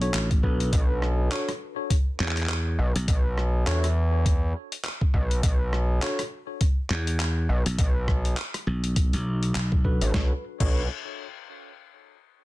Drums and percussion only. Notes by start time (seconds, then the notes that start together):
0.02 closed hi-hat
0.14 clap, closed hi-hat
0.31 kick, closed hi-hat
0.43 kick
0.60 closed hi-hat
0.73 kick, closed hi-hat
1.02 cross-stick
1.32 clap, closed hi-hat
1.49 cross-stick, closed hi-hat
1.90 kick, closed hi-hat
2.20 clap
2.28 clap
2.37 clap, closed hi-hat
2.43 clap
2.49 clap
2.96 closed hi-hat
3.08 kick, closed hi-hat
3.38 cross-stick
3.67 clap, closed hi-hat
3.84 cross-stick, closed hi-hat
4.26 kick, closed hi-hat
4.72 closed hi-hat
4.85 clap, closed hi-hat
5.01 kick
5.14 kick
5.31 closed hi-hat
5.43 kick, closed hi-hat
5.73 cross-stick
6.02 clap, closed hi-hat
6.19 cross-stick, closed hi-hat
6.61 kick, closed hi-hat
6.90 clap
7.07 closed hi-hat
7.20 clap, closed hi-hat
7.66 closed hi-hat
7.79 kick, closed hi-hat
8.08 kick, cross-stick
8.25 closed hi-hat
8.37 clap, closed hi-hat
8.54 cross-stick, closed hi-hat
8.84 closed hi-hat
8.96 kick, closed hi-hat
9.13 closed hi-hat
9.43 closed hi-hat
9.55 clap, closed hi-hat
9.72 kick
9.85 kick
10.01 closed hi-hat
10.14 kick, snare
10.60 kick, crash